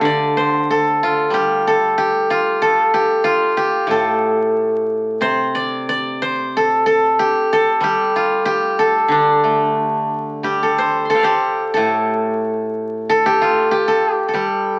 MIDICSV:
0, 0, Header, 1, 2, 480
1, 0, Start_track
1, 0, Tempo, 648649
1, 16, Time_signature, 2, 2, 24, 8
1, 6735, Tempo, 677201
1, 8175, Tempo, 638298
1, 10095, Tempo, 662252
1, 10897, End_track
2, 0, Start_track
2, 0, Title_t, "Guzheng"
2, 0, Program_c, 0, 107
2, 0, Note_on_c, 0, 57, 34
2, 0, Note_on_c, 0, 62, 64
2, 0, Note_on_c, 0, 65, 67
2, 0, Note_on_c, 0, 67, 55
2, 0, Note_on_c, 0, 69, 62
2, 8, Note_on_c, 0, 50, 59
2, 37, Note_on_c, 0, 74, 91
2, 263, Note_off_c, 0, 57, 0
2, 273, Note_on_c, 0, 72, 81
2, 518, Note_off_c, 0, 69, 0
2, 521, Note_on_c, 0, 69, 86
2, 760, Note_off_c, 0, 65, 0
2, 762, Note_on_c, 0, 65, 81
2, 964, Note_on_c, 0, 55, 58
2, 987, Note_off_c, 0, 67, 0
2, 990, Note_on_c, 0, 67, 83
2, 1107, Note_off_c, 0, 62, 0
2, 1236, Note_off_c, 0, 69, 0
2, 1239, Note_on_c, 0, 69, 87
2, 1403, Note_off_c, 0, 74, 0
2, 1452, Note_off_c, 0, 50, 0
2, 1460, Note_off_c, 0, 67, 0
2, 1463, Note_on_c, 0, 67, 96
2, 1701, Note_off_c, 0, 65, 0
2, 1704, Note_on_c, 0, 65, 81
2, 1740, Note_off_c, 0, 72, 0
2, 1935, Note_off_c, 0, 69, 0
2, 1937, Note_on_c, 0, 69, 99
2, 2171, Note_off_c, 0, 67, 0
2, 2174, Note_on_c, 0, 67, 81
2, 2394, Note_off_c, 0, 65, 0
2, 2396, Note_off_c, 0, 55, 0
2, 2397, Note_on_c, 0, 65, 88
2, 2639, Note_off_c, 0, 67, 0
2, 2642, Note_on_c, 0, 67, 89
2, 2863, Note_on_c, 0, 45, 58
2, 2888, Note_off_c, 0, 69, 0
2, 2891, Note_on_c, 0, 69, 71
2, 3847, Note_off_c, 0, 45, 0
2, 3853, Note_on_c, 0, 48, 50
2, 3859, Note_on_c, 0, 72, 94
2, 4106, Note_on_c, 0, 74, 87
2, 4268, Note_off_c, 0, 65, 0
2, 4355, Note_off_c, 0, 74, 0
2, 4357, Note_on_c, 0, 74, 100
2, 4385, Note_off_c, 0, 67, 0
2, 4515, Note_off_c, 0, 69, 0
2, 4599, Note_off_c, 0, 72, 0
2, 4602, Note_on_c, 0, 72, 97
2, 4859, Note_on_c, 0, 69, 86
2, 5073, Note_off_c, 0, 69, 0
2, 5076, Note_on_c, 0, 69, 91
2, 5312, Note_off_c, 0, 48, 0
2, 5322, Note_on_c, 0, 67, 87
2, 5566, Note_off_c, 0, 69, 0
2, 5569, Note_on_c, 0, 69, 99
2, 5724, Note_off_c, 0, 74, 0
2, 5775, Note_on_c, 0, 55, 68
2, 5797, Note_off_c, 0, 67, 0
2, 5800, Note_on_c, 0, 67, 98
2, 6037, Note_on_c, 0, 65, 69
2, 6069, Note_off_c, 0, 72, 0
2, 6253, Note_off_c, 0, 67, 0
2, 6256, Note_on_c, 0, 67, 91
2, 6501, Note_off_c, 0, 69, 0
2, 6504, Note_on_c, 0, 69, 89
2, 6721, Note_on_c, 0, 50, 58
2, 6745, Note_on_c, 0, 62, 72
2, 6972, Note_on_c, 0, 57, 43
2, 7203, Note_off_c, 0, 55, 0
2, 7678, Note_on_c, 0, 55, 49
2, 7682, Note_off_c, 0, 67, 0
2, 7685, Note_on_c, 0, 67, 77
2, 7814, Note_off_c, 0, 69, 0
2, 7817, Note_on_c, 0, 69, 73
2, 7858, Note_off_c, 0, 65, 0
2, 7927, Note_on_c, 0, 72, 80
2, 7939, Note_off_c, 0, 57, 0
2, 8116, Note_on_c, 0, 84, 36
2, 8147, Note_off_c, 0, 69, 0
2, 8150, Note_on_c, 0, 69, 91
2, 8156, Note_on_c, 0, 81, 36
2, 8168, Note_off_c, 0, 50, 0
2, 8183, Note_on_c, 0, 77, 46
2, 8186, Note_on_c, 0, 79, 35
2, 8219, Note_on_c, 0, 74, 52
2, 8243, Note_off_c, 0, 72, 0
2, 8246, Note_on_c, 0, 72, 56
2, 8253, Note_off_c, 0, 67, 0
2, 8256, Note_on_c, 0, 67, 77
2, 8262, Note_off_c, 0, 69, 0
2, 8265, Note_on_c, 0, 69, 57
2, 8627, Note_off_c, 0, 69, 0
2, 8630, Note_on_c, 0, 69, 77
2, 8652, Note_on_c, 0, 45, 62
2, 8763, Note_off_c, 0, 62, 0
2, 9096, Note_off_c, 0, 84, 0
2, 9128, Note_off_c, 0, 55, 0
2, 9243, Note_off_c, 0, 81, 0
2, 9354, Note_off_c, 0, 79, 0
2, 9437, Note_off_c, 0, 77, 0
2, 9607, Note_off_c, 0, 74, 0
2, 9647, Note_off_c, 0, 69, 0
2, 9650, Note_on_c, 0, 69, 101
2, 9737, Note_off_c, 0, 72, 0
2, 9771, Note_off_c, 0, 67, 0
2, 9774, Note_on_c, 0, 67, 92
2, 9891, Note_on_c, 0, 65, 80
2, 10091, Note_off_c, 0, 45, 0
2, 10111, Note_off_c, 0, 67, 0
2, 10114, Note_on_c, 0, 67, 84
2, 10231, Note_off_c, 0, 69, 0
2, 10233, Note_on_c, 0, 69, 82
2, 10415, Note_off_c, 0, 67, 0
2, 10415, Note_off_c, 0, 69, 0
2, 10415, Note_on_c, 0, 67, 82
2, 10526, Note_off_c, 0, 67, 0
2, 10528, Note_on_c, 0, 69, 56
2, 10565, Note_on_c, 0, 55, 53
2, 10571, Note_on_c, 0, 67, 73
2, 10897, Note_off_c, 0, 55, 0
2, 10897, Note_off_c, 0, 65, 0
2, 10897, Note_off_c, 0, 67, 0
2, 10897, Note_off_c, 0, 69, 0
2, 10897, End_track
0, 0, End_of_file